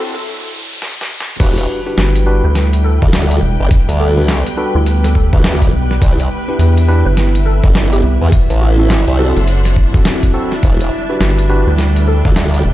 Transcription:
Already playing: ambient pad D3 F#3 C4 E4, tine electric piano C4 E4 F#4 A4, string section D4 F#4 E5 C6, riser
0.14 synth pluck A4
0.82 snare
1.01 snare
1.20 snare
1.40 wobble bass E1, ambient pad D3 G3 E4, tine electric piano D4 F#4 G4 B4, kick, closed hi-hat, crash
1.58 closed hi-hat
1.69 string section B4
1.86 tine electric piano D4 F#4 G4 B4
1.97 analog synth bass G1, string section G5, snare, closed hi-hat
2.15 closed hi-hat
2.26 tine electric piano D4 F#4 G4 B4
2.44 analog synth bass D2, synth pluck B4
2.55 snare, closed hi-hat
2.73 closed hi-hat
2.84 synth pluck A4
3.02 wobble bass D2, kick
3.13 snare, closed hi-hat
3.31 closed hi-hat
3.42 analog synth bass E1
3.60 wobble bass G1
3.71 ambient pad G3 B3 G4, kick, closed hi-hat
3.89 wobble bass D2, closed hi-hat
4.00 synth pluck A4
4.17 tine electric piano D4 F#4 A4 B4
4.28 snare, closed hi-hat
4.46 closed hi-hat
4.57 tine electric piano D4 F#4 A4 B4
4.75 analog synth bass D2, synth pluck E4
4.86 closed hi-hat
5.04 synth pluck A4, snare, closed hi-hat
5.15 synth pluck A4, kick
5.33 wobble bass D2, tine electric piano D4 F#4 A4 B4, kick
5.44 snare, closed hi-hat
5.62 kick, closed hi-hat
5.73 analog synth bass B1
5.91 snare
6.01 wobble bass C2, ambient pad C3 E4, kick, closed hi-hat
6.20 closed hi-hat
6.41 string section E5
6.48 tine electric piano D4 E4 G4 B4
6.59 analog synth bass E2, closed hi-hat
6.77 closed hi-hat
6.88 tine electric piano D4 E4 G4 B4
7.05 analog synth bass G1, synth pluck B4
7.17 snare, closed hi-hat
7.35 closed hi-hat
7.46 synth pluck A4
7.64 wobble bass G1, kick, snare
7.75 snare, closed hi-hat
7.92 synth pluck G4, closed hi-hat
8.03 analog synth bass C2
8.21 wobble bass E2
8.32 ambient pad F#3, string section D4, kick, closed hi-hat
8.50 wobble bass A1, closed hi-hat
8.62 synth pluck F#4, string section C5
8.79 tine electric piano C4 E4 F#4 A4
8.90 snare, closed hi-hat
8.98 string section F#5
9.08 wobble bass C2, closed hi-hat
9.19 tine electric piano C4 E4 F#4 A4, synth pluck A4
9.36 analog synth bass F#1, synth pluck A4, closed hi-hat
9.48 closed hi-hat
9.65 snare, closed hi-hat
9.76 kick
9.94 tine electric piano C4 E4 F#4 A4, kick, closed hi-hat
10.05 snare, closed hi-hat
10.23 kick, closed hi-hat
10.34 tine electric piano C4 E4 F#4 A4
10.52 snare
10.63 wobble bass E1, ambient pad D3 G3, kick, closed hi-hat
10.81 closed hi-hat
10.99 string section B4
11.10 tine electric piano D4 F#4 G4 B4
11.20 analog synth bass G1, snare, closed hi-hat
11.39 closed hi-hat
11.49 tine electric piano D4 F#4 G4 B4
11.67 analog synth bass D2, synth pluck B4, string section G5
11.78 snare, closed hi-hat
11.96 closed hi-hat
12.07 synth pluck A4
12.25 wobble bass D2, kick, snare
12.36 snare, closed hi-hat
12.54 closed hi-hat
12.65 analog synth bass E1

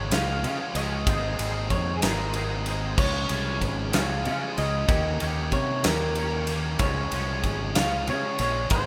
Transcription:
Already playing: clean electric guitar C#3 F3 G#3 C#4 F4 C#5
0.11 fingered electric bass C#2, clean electric guitar C#3 F3 G#3 C#4 F4 C#5 F5, snare, ride
0.42 clean electric guitar C#3 F3 G#3 C#4 F4 C#5, fingered electric bass C#3, ride
0.74 fingered electric bass C#2, clean electric guitar C#3 F3 G#3 C#4 F4 C#5 D#5, ride
1.07 fingered electric bass G#1, overdriven electric guitar G#2 D#3 C4, clean electric guitar G#3 A#3 D#4 G#4 C5, kick, ride
1.38 fingered electric bass G#1, overdriven electric guitar G#2 D#3 C4, clean electric guitar G#3 A#3 D#4 G#4 C5, ride
1.70 fingered electric bass F2, clean electric guitar C#5, kick, ride
1.97 clean electric guitar G#4
2.01 fingered electric bass G#1, overdriven electric guitar G#2 D#3 C4, clean electric guitar G#3 A#3 D#4 G#4 A#4 C5, snare, ride
2.33 overdriven electric guitar G#2 D#3 C4, clean electric guitar G#3 A#3 D#4 G#4 C5, ride
2.66 overdriven electric guitar G#2 D#3 C4, clean electric guitar G#3 A#3 D#4 G#4 C5, ride
2.98 fingered electric bass C#2, clean electric guitar C#3 F3 G#3 C#4 F4 C#5, overdriven electric guitar G#4, kick, crash
3.29 fingered electric bass C2, clean electric guitar C#3 F3 G#3 C#4 F4 C#5, overdriven electric guitar G#4, ride
3.61 fingered electric bass G#1, kick, ride
3.92 fingered electric bass C#2, clean electric guitar C#3 F3 G#3 C#4 F4 C#5 F5, overdriven electric guitar G#4, snare, ride
4.25 clean electric guitar C#3 F3 G#3 C#4 F4 C#5, fingered electric bass C#3, overdriven electric guitar G#4, ride
4.55 fingered electric bass C#2, clean electric guitar C#3 F3 G#3 C#4 F4 C#5 D#5, overdriven electric guitar G#4, ride
4.87 fingered electric bass D#2, clean electric guitar D#3 A#3 C#4 G4 C#5, overdriven electric guitar A#4, kick, ride
5.20 fingered electric bass D#2, clean electric guitar D#3 A#3 C#4 G4 C#5, overdriven electric guitar A#4, ride
5.52 fingered electric bass C3, clean electric guitar C#5, kick, ride
5.84 fingered electric bass D#2, clean electric guitar D#3 A#3 C#4 G4 A#4 C#5, overdriven electric guitar A#4, snare, ride
6.15 clean electric guitar D#3 A#3 C#4 G4 C#5, overdriven electric guitar A#4, ride
6.47 clean electric guitar D#3 A#3 C#4 G4 C#5, overdriven electric guitar A#4, ride
6.79 fingered electric bass C#2, clean electric guitar C#3 F3 G#3 C#4 F4 C#5, overdriven electric guitar G#4, kick, ride
7.12 fingered electric bass C2, clean electric guitar C#3 F3 G#3 C#4 F4 C#5, overdriven electric guitar G#4, ride
7.43 fingered electric bass G#1, kick, ride
7.75 fingered electric bass C#2, clean electric guitar C#3 F3 G#3 C#4 F4 C#5 F5, overdriven electric guitar G#4, snare, ride
8.07 clean electric guitar C#3 F3 G#3 C#4 F4 C#5, fingered electric bass C#3, overdriven electric guitar G#4, ride
8.39 fingered electric bass A#1, clean electric guitar C#3 F3 G#3 C#4 F4 C#5, overdriven electric guitar G#4, ride
8.70 fingered electric bass G#1, overdriven electric guitar G#2 D#3 C4, clean electric guitar G#3 A#3 D#4 G#4 C5, kick, ride

